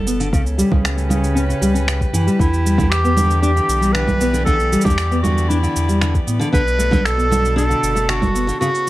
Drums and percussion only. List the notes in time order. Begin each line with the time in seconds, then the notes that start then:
0.07 cabasa
0.20 cabasa
0.33 kick, cabasa
0.46 cabasa
0.59 cabasa
0.72 kick, low conga
0.85 finger snap, cabasa
0.98 cabasa
1.10 low conga, cabasa
1.24 cabasa
1.37 cabasa
1.50 cabasa
1.63 cabasa
1.76 cabasa
1.88 finger snap, cabasa
2.01 kick, cabasa
2.14 cabasa
2.28 cabasa
2.39 kick, cabasa
2.54 cabasa
2.67 cabasa
2.78 kick, low conga, cabasa
2.92 finger snap, cabasa
3.05 cabasa
3.17 low conga, cabasa
3.31 cabasa
3.43 cabasa
3.57 cabasa
3.69 cabasa
3.82 cabasa
3.95 finger snap, cabasa
4.07 kick, low conga, cabasa
4.21 cabasa
4.34 cabasa
4.46 kick, cabasa
4.60 cabasa
4.73 cabasa
4.81 kick, low conga, cabasa
4.86 cabasa
4.90 cabasa
4.98 finger snap, cabasa
5.12 cabasa
5.24 low conga, cabasa
5.38 cabasa
5.51 cabasa
5.64 cabasa
5.76 cabasa
5.89 cabasa
6.01 finger snap, cabasa
6.15 kick, cabasa
6.28 cabasa
6.41 cabasa
6.53 kick, cabasa
6.67 cabasa
6.80 cabasa
6.92 kick, low conga, cabasa
7.05 finger snap, cabasa
7.19 cabasa
7.32 low conga, cabasa
7.45 cabasa
7.58 cabasa
7.71 cabasa
7.84 cabasa
7.96 cabasa
8.09 finger snap, cabasa
8.22 kick, low conga, cabasa
8.36 cabasa
8.49 cabasa
8.62 cabasa
8.75 cabasa